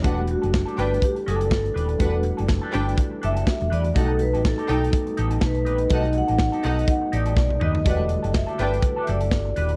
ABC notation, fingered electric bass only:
X:1
M:4/4
L:1/16
Q:"Swing 16ths" 1/4=123
K:Edor
V:1 name="Fingered electric bass" clef=bass
E,,,3 F,,,2 z G,,,2 z2 F,,,2 G,,,2 ^D,,,2 | E,,,3 F,,,2 z G,,,2 z2 F,,,2 z E,,, E,,2 | B,,,3 A,,,2 z B,,,2 z2 A,,,2 B,,,2 ^A,,,2 | B,,,3 A,,,2 z B,,,2 z2 A,,,2 B,,,2 ^D,,2 |
E,,,3 F,,,2 z G,,,2 z2 F,,,2 G,,,2 ^D,,,2 |]